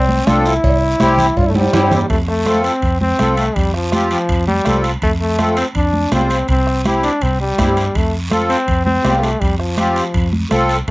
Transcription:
Already playing: fingered electric bass C2, trombone C4
0.09 high conga
0.27 fingered electric bass C2, accordion C4 F4 A4, trombone D4, bombo rim, cowbell, high conga, short guiro
0.46 trombone E4, short guiro
0.64 fingered electric bass C2, bombo low, cowbell, long guiro
1.00 fingered electric bass C2, accordion C4 E4 G4, bombo rim, cowbell, high conga, short guiro
1.18 low conga, short guiro
1.37 fingered electric bass G2, trombone F4, bombo low, cowbell, long guiro
1.46 trombone A3 E4
1.55 trombone G3, high conga, high timbale
1.73 fingered electric bass G2, accordion C4 E4 G4, bombo rim, cowbell, low conga, high timbale, short guiro
1.91 low conga, low timbale, short guiro
2.10 fingered electric bass F2, trombone A3, bombo low, high timbale, long guiro
2.28 trombone A3, bombo rim
2.46 accordion C4 F4 A4, bombo rim, high conga, high timbale, short guiro
2.64 trombone C4, high timbale, short guiro
2.82 fingered electric bass F2, bombo low, high timbale, long guiro
3.01 trombone C4, high conga
3.19 fingered electric bass C2, accordion C4 F4 A4, bombo rim, high conga, high timbale, short guiro
3.37 trombone A3, high timbale, short guiro
3.56 fingered electric bass F2, trombone G3, bombo low, high timbale, long guiro
3.74 trombone F3, bombo rim
3.92 accordion C4 F4 G4, bombo rim, high conga, high timbale, short guiro
4.11 trombone F3, high timbale, short guiro
4.29 fingered electric bass F2, bombo low, high timbale, long guiro
4.48 trombone G3, high conga
4.65 fingered electric bass C2, accordion C4 F4 A4, bombo rim, high conga, high timbale, short guiro
4.84 high timbale, short guiro
5.02 fingered electric bass F2, trombone A3, bombo low, high timbale, long guiro
5.21 trombone A3
5.38 accordion C4 F4 A4, bombo rim, high conga, high timbale, short guiro
5.57 trombone C4, high timbale, short guiro
5.75 fingered electric bass F2, trombone D4, bombo low, high timbale, long guiro
5.93 high conga
6.11 fingered electric bass C2, accordion C4 F4 C5, trombone C4, bombo rim, high conga, high timbale, low timbale, short guiro
6.30 high timbale, short guiro
6.48 fingered electric bass C2, trombone C4, bombo low, high timbale, long guiro
6.67 bombo rim
6.84 accordion C4 E4 G4, bombo rim, high conga, high timbale, short guiro
7.03 trombone D4, high timbale, short guiro
7.21 fingered electric bass C2, trombone C4, bombo low, high timbale, long guiro
7.41 trombone G3
7.58 fingered electric bass G2, accordion C4 E4 G4, bombo low, bombo rim, high conga, high timbale, low timbale, short guiro
7.77 high timbale, short guiro
7.95 fingered electric bass F2, trombone A3, bombo low, high timbale, long guiro
8.31 accordion C4 F4 A4, bombo rim, high conga, high timbale, short guiro
8.50 trombone C4, high timbale, short guiro
8.68 fingered electric bass F2, bombo low, high timbale, long guiro
8.85 trombone C4, high conga
9.03 fingered electric bass C2, accordion C4 F4 G4, bombo rim, high conga, high timbale, low timbale, short guiro
9.21 trombone A3, high timbale, short guiro
9.40 fingered electric bass F2, trombone G3, bombo low, high timbale, long guiro
9.58 trombone F3, bombo rim
9.77 accordion C4 F4 G4, bombo rim, high conga, high timbale, short guiro
9.96 high timbale, short guiro
10.14 fingered electric bass F2, bombo low, high timbale, long guiro
10.33 high conga
10.51 fingered electric bass C2, accordion C4 F4 A4, bombo rim, high conga, high timbale, short guiro
10.69 high timbale, short guiro

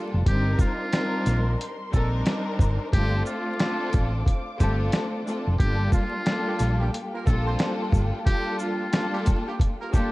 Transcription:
Already playing: string section G3 A#3 D4 F4 G4 A4 F5 G5
0.14 fingered electric bass F1
0.25 fingered electric bass G1, string section G3 C4 D4 D#4 A#4 C5 C6, muted trumpet G4, kick, closed hi-hat
0.59 muted trumpet F4, kick, shaker
0.92 string section G3 C4 D4 D#4 A#4, snare, closed hi-hat
1.26 fingered electric bass A#1, snare, closed hi-hat, shaker
1.61 closed hi-hat
1.92 fingered electric bass A#1, string section G3 C4 D4 D#4 A#4, muted trumpet A4, kick, shaker
2.26 snare, closed hi-hat
2.59 fingered electric bass G1, kick, shaker
2.92 fingered electric bass G1, string section A3 C4 D4 F4 A4 C5 F5 D6, muted trumpet G4, kick, closed hi-hat
3.26 muted trumpet F4, shaker
3.59 string section A3 C4 D4 F4 A4, snare, closed hi-hat
3.93 fingered electric bass A1, kick, closed hi-hat, shaker
4.26 kick, closed hi-hat
4.59 fingered electric bass G1, string section A3 C4 D4 F4 A4, muted trumpet G4, kick, closed hi-hat, shaker
4.92 snare, closed hi-hat
5.26 string section A3 C4 D4 F4 A4, shaker
5.47 fingered electric bass F1
5.59 fingered electric bass G1, string section G3 A#3 D4 F4 G4 A4 F5 G5, muted trumpet G4, kick, closed hi-hat
5.92 horn section F3 A#3 D4 F4, muted trumpet F4, kick, shaker
6.26 string section G3 A#3 D4 F4 A4, snare, closed hi-hat
6.47 horn section G3 A#3 D4 G4
6.59 fingered electric bass A#1, snare, closed hi-hat, shaker
6.80 horn section G3 A#3 D4 G4
6.94 closed hi-hat
7.14 horn section A#3 F4 G4 A#4
7.25 fingered electric bass A#1, string section G3 A#3 D4 F4 A4, muted trumpet A4, kick, shaker
7.46 horn section C4 F4 A4 C5
7.59 snare, closed hi-hat
7.92 fingered electric bass G1, kick, shaker
8.26 string section G3 A#3 D4 F4 A4, muted trumpet G4, kick, closed hi-hat
8.59 horn section F3 A#3 D4 F4, muted trumpet F4, shaker
8.91 string section G3 A#3 D4 F4 A4, snare, closed hi-hat
9.14 horn section G3 A#3 D4 G4
9.26 kick, closed hi-hat, shaker
9.46 horn section G3 A#3 D4 G4
9.60 kick, closed hi-hat
9.80 horn section A#3 F4 G4 A#4
9.92 string section G3 A#3 D4 F4 A4, muted trumpet G4, kick, shaker

